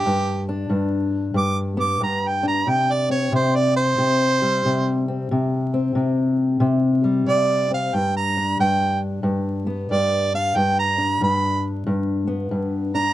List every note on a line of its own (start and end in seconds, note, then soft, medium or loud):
0.00 0.47 G4 loud
0.06 0.68 G2 medium
0.49 2.42 D4 medium
0.70 1.33 G2 medium
1.34 1.99 G2 medium
1.34 1.57 D6 medium
1.77 2.63 B3 medium
1.77 2.01 D6 medium
2.01 2.63 G2 medium
2.01 2.29 A#5 medium
2.27 2.46 G5 medium
2.43 2.63 D4 medium
2.48 2.70 A#5 medium
2.67 3.32 C3 medium
2.67 2.94 G5 medium
2.92 3.11 D5 medium
3.10 5.06 C4 medium
3.10 3.32 C#5 medium
3.32 3.98 C3 medium
3.32 3.57 C5 medium
3.56 3.76 D5 medium
3.77 5.03 C5 loud
3.98 4.63 C3 medium
4.42 7.03 G3 medium
4.65 5.27 C3 medium
5.08 5.27 C4 medium
5.31 5.94 C3 medium
5.74 7.69 C4 medium
5.95 6.59 C3 medium
6.60 7.26 C3 medium
7.04 9.66 G3 medium
7.27 7.89 C3 medium
7.27 7.70 D5 loud
7.71 7.90 C4 medium
7.71 7.96 F5 medium
7.94 8.59 G2 medium
7.94 8.15 G5 loud
8.17 8.58 A#5 medium
8.37 10.34 D4 medium
8.59 9.23 G2 medium
8.59 9.00 G5 loud
9.23 9.89 G2 medium
9.67 10.53 B3 medium
9.91 10.53 G2 medium
9.91 10.33 D5 medium
10.34 10.98 D4 medium
10.34 10.57 F5 medium
10.56 11.20 G2 medium
10.56 10.77 G5 loud
10.79 11.21 A#5 loud
10.98 12.93 D4 medium
11.21 11.85 G2 medium
11.21 11.63 B5 medium
11.87 12.50 G2 medium
12.27 13.13 B3 medium
12.51 13.13 G2 medium
12.95 13.13 D4 medium
12.95 13.13 A#5 loud